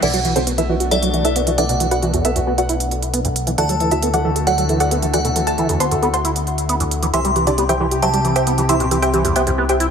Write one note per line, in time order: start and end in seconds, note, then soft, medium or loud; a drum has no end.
0.02 3.56 B1 medium
0.02 0.09 E3 medium
0.02 3.54 A3 medium
0.02 3.55 B3 medium
0.02 3.54 D4 medium
0.02 0.11 D4 medium
0.02 0.11 A4 medium
0.02 0.11 B4 medium
0.02 0.11 D5 medium
0.02 0.11 D5 loud
0.02 0.83 F#5 medium
0.02 closed hi-hat medium
0.02 crash medium
0.14 0.20 F#3 medium
0.14 0.22 F#4 medium
0.14 0.23 F#4 medium
0.14 closed hi-hat medium
0.25 0.34 E3 medium
0.25 0.34 F#4 medium
0.25 closed hi-hat soft
0.36 0.40 D3 medium
0.36 0.45 C4 medium
0.36 0.45 F#4 medium
0.36 0.45 A4 medium
0.36 0.45 C5 medium
0.36 closed hi-hat medium
0.47 0.53 B3 medium
0.47 0.56 F#4 medium
0.47 closed hi-hat medium
0.58 0.62 E3 medium
0.58 0.67 E4 medium
0.58 0.67 A4 medium
0.58 0.67 B4 medium
0.58 0.67 E5 medium
0.58 closed hi-hat medium
0.69 0.75 E3 loud
0.69 0.78 F#4 medium
0.80 0.89 F#4 medium
0.80 closed hi-hat soft
0.91 0.98 F#3 medium
0.91 1.00 E4 medium
0.91 1.00 A4 medium
0.91 1.00 B4 medium
0.91 1.49 D5 medium
0.91 1.00 E5 medium
0.91 closed hi-hat medium
1.02 1.09 F#3 medium
1.02 1.11 F#4 medium
1.02 closed hi-hat medium
1.14 1.23 E3 medium
1.14 1.22 F#4 medium
1.14 1.23 F#4 medium
1.14 closed hi-hat soft
1.25 1.34 E4 medium
1.25 1.34 A4 medium
1.25 1.34 B4 medium
1.25 1.34 E5 medium
1.25 closed hi-hat medium
1.36 1.42 B3 medium
1.36 1.45 F#4 medium
1.36 closed hi-hat medium
1.47 1.51 E3 medium
1.47 1.56 F#4 medium
1.47 closed hi-hat medium
1.58 1.64 E3 loud
1.58 1.67 D4 medium
1.58 1.67 A4 medium
1.58 1.67 B4 medium
1.58 1.67 D5 medium
1.58 3.49 F#5 medium
1.58 closed hi-hat medium
1.69 1.75 B2 loud
1.69 1.78 F#4 medium
1.69 closed hi-hat medium
1.80 1.87 E3 medium
1.80 1.89 F#4 medium
1.80 closed hi-hat medium
1.91 2.00 F#4 medium
1.91 2.00 B4 medium
1.91 2.00 D5 medium
1.91 2.00 F#5 medium
1.91 closed hi-hat soft
2.02 2.12 E3 medium
2.02 2.11 F#4 medium
2.02 closed hi-hat soft
2.14 2.23 E2 medium
2.14 2.23 F#4 medium
2.14 closed hi-hat medium
2.25 2.31 B3 medium
2.25 2.34 E4 medium
2.25 2.34 A4 medium
2.25 2.34 B4 medium
2.25 2.34 E5 medium
2.25 closed hi-hat medium
2.36 2.40 E2 loud
2.36 2.45 F#4 medium
2.36 closed hi-hat soft
2.47 2.53 B3 medium
2.47 2.56 F#4 medium
2.58 3.49 F#4 medium
2.58 3.49 B4 medium
2.58 3.49 D5 medium
2.58 3.49 F#5 medium
2.58 closed hi-hat medium
2.69 2.75 E4 medium
2.69 closed hi-hat medium
2.80 closed hi-hat medium
2.91 closed hi-hat soft
3.03 closed hi-hat soft
3.14 3.20 B3 medium
3.14 closed hi-hat medium
3.25 3.28 E2 loud
3.25 closed hi-hat soft
3.36 closed hi-hat medium
3.47 3.51 E3 medium
3.47 closed hi-hat soft
3.58 7.11 D2 medium
3.58 7.10 D3 medium
3.58 3.64 E3 medium
3.58 7.10 A3 medium
3.58 9.91 E4 medium
3.58 7.10 F#4 medium
3.58 3.67 F#4 medium
3.58 3.67 A4 medium
3.58 3.67 D5 medium
3.58 3.67 F#5 loud
3.58 3.67 F#5 medium
3.58 4.38 A5 medium
3.58 closed hi-hat medium
3.69 3.75 F#3 medium
3.69 3.78 A4 medium
3.69 closed hi-hat soft
3.80 3.90 E3 medium
3.80 3.89 A4 medium
3.80 closed hi-hat soft
3.91 3.95 D3 medium
3.91 4.00 E4 medium
3.91 4.00 F#4 medium
3.91 4.00 A4 medium
3.91 4.00 E5 medium
3.91 closed hi-hat soft
4.03 4.09 B3 medium
4.03 4.11 A4 medium
4.03 closed hi-hat medium
4.14 4.17 E3 medium
4.14 4.23 F#4 medium
4.14 4.23 A4 medium
4.14 4.23 D5 medium
4.14 4.23 F#5 medium
4.14 closed hi-hat soft
4.25 4.31 E3 loud
4.25 4.34 A4 medium
4.36 4.45 A4 medium
4.36 closed hi-hat soft
4.47 4.53 F#3 medium
4.47 4.56 F#4 medium
4.47 4.56 A4 medium
4.47 4.56 D5 medium
4.47 4.56 F#5 loud
4.47 5.05 F#5 medium
4.47 4.56 F#5 medium
4.47 closed hi-hat medium
4.58 4.64 F#3 medium
4.58 4.67 A4 medium
4.58 closed hi-hat soft
4.69 4.79 E3 medium
4.69 4.78 A4 medium
4.69 closed hi-hat soft
4.80 4.89 F#4 medium
4.80 4.89 A4 medium
4.80 4.89 D5 medium
4.80 4.89 F#5 medium
4.80 closed hi-hat soft
4.91 4.98 B3 medium
4.91 5.00 A4 medium
4.91 closed hi-hat medium
5.02 5.06 E3 medium
5.02 5.11 A4 medium
5.02 closed hi-hat soft
5.14 5.20 E3 loud
5.14 5.22 F#4 medium
5.14 5.23 A4 medium
5.14 5.23 D5 medium
5.14 5.23 F#5 loud
5.14 7.05 F#5 medium
5.14 5.23 F#5 medium
5.14 closed hi-hat medium
5.25 5.31 B2 loud
5.25 5.34 A4 medium
5.25 closed hi-hat soft
5.36 5.42 E3 medium
5.36 5.45 A4 medium
5.36 closed hi-hat medium
5.47 5.56 A4 medium
5.47 5.56 E5 medium
5.47 5.56 F#5 medium
5.47 5.56 A5 medium
5.47 closed hi-hat soft
5.58 5.68 E3 medium
5.58 5.67 A4 medium
5.58 closed hi-hat soft
5.69 5.79 E2 medium
5.69 5.78 A4 medium
5.69 closed hi-hat soft
5.80 5.87 B3 medium
5.80 5.89 C5 medium
5.80 5.89 F#5 medium
5.80 5.89 A5 medium
5.80 5.89 C6 medium
5.80 closed hi-hat medium
5.91 5.95 E2 loud
5.91 6.00 A4 medium
5.91 closed hi-hat soft
6.02 6.09 B3 medium
6.02 6.11 A4 medium
6.02 closed hi-hat soft
6.14 7.05 C5 medium
6.14 7.05 F#5 medium
6.14 7.05 A5 medium
6.14 7.05 C6 medium
6.14 closed hi-hat soft
6.25 6.31 E4 medium
6.25 closed hi-hat medium
6.36 closed hi-hat soft
6.47 closed hi-hat soft
6.58 closed hi-hat soft
6.69 6.75 B3 medium
6.69 closed hi-hat medium
6.80 6.84 E2 loud
6.80 closed hi-hat soft
6.91 closed hi-hat medium
7.03 7.06 E3 medium
7.03 closed hi-hat soft
7.13 9.91 C2 medium
7.13 9.91 C3 medium
7.13 7.20 E3 medium
7.13 9.91 C4 medium
7.13 7.23 E4 medium
7.13 7.23 G4 medium
7.13 9.91 G4 medium
7.13 7.23 C5 medium
7.13 7.22 E5 medium
7.13 7.22 E5 loud
7.13 7.94 C6 medium
7.13 closed hi-hat medium
7.25 7.31 G3 medium
7.25 7.34 G4 medium
7.25 closed hi-hat soft
7.36 7.45 E3 medium
7.36 7.45 G4 medium
7.36 closed hi-hat soft
7.47 7.51 D3 medium
7.47 7.56 D4 medium
7.47 7.56 E4 medium
7.47 7.56 G4 medium
7.47 7.56 D5 medium
7.47 closed hi-hat soft
7.58 7.64 B3 medium
7.58 7.67 G4 medium
7.58 closed hi-hat medium
7.69 7.73 E3 medium
7.69 7.78 G4 medium
7.69 7.78 C5 medium
7.69 7.78 E5 medium
7.69 7.78 G5 medium
7.69 closed hi-hat soft
7.80 7.87 E3 loud
7.80 7.89 G4 medium
7.91 8.00 G4 medium
7.91 closed hi-hat soft
8.02 8.09 F#3 medium
8.02 8.11 G4 medium
8.02 8.11 C5 medium
8.02 8.11 E5 medium
8.02 8.11 G5 medium
8.02 8.60 A5 medium
8.02 closed hi-hat medium
8.13 8.20 G3 medium
8.13 8.22 G4 medium
8.13 8.23 G4 medium
8.13 closed hi-hat medium
8.25 8.34 E3 medium
8.25 8.34 G4 medium
8.25 closed hi-hat soft
8.36 8.45 G4 medium
8.36 8.45 C5 medium
8.36 8.45 E5 medium
8.36 8.45 G5 medium
8.36 8.45 G5 loud
8.36 closed hi-hat soft
8.47 8.53 B3 medium
8.47 8.56 G4 medium
8.47 closed hi-hat medium
8.58 8.62 E3 medium
8.58 8.67 G4 medium
8.58 closed hi-hat soft
8.69 8.75 E3 medium
8.69 8.78 E4 medium
8.69 8.78 G4 medium
8.69 8.78 C5 medium
8.69 8.78 E5 medium
8.69 8.78 E5 loud
8.69 9.91 C6 medium
8.69 closed hi-hat medium
8.80 8.87 B2 loud
8.80 8.89 G4 medium
8.80 closed hi-hat soft
8.91 8.98 E3 medium
8.91 9.00 G4 medium
8.91 closed hi-hat medium
9.02 9.11 G4 medium
9.02 9.11 C5 medium
9.02 9.11 E5 medium
9.02 9.11 G5 medium
9.02 9.11 G5 loud
9.02 closed hi-hat soft
9.14 9.23 E3 medium
9.14 9.22 G4 medium
9.14 closed hi-hat soft
9.25 9.34 E2 medium
9.25 9.34 G4 medium
9.25 closed hi-hat medium
9.36 9.42 B3 medium
9.36 9.45 G4 medium
9.36 9.45 C5 medium
9.36 9.45 E5 medium
9.36 9.45 G5 medium
9.36 closed hi-hat medium
9.47 9.51 E2 loud
9.47 9.56 G4 medium
9.47 closed hi-hat soft
9.58 9.64 B3 medium
9.58 9.67 G4 medium
9.69 9.91 G4 medium
9.69 9.91 C5 medium
9.69 9.91 E5 medium
9.69 9.91 G5 medium
9.69 closed hi-hat soft
9.80 9.87 E4 medium
9.80 closed hi-hat medium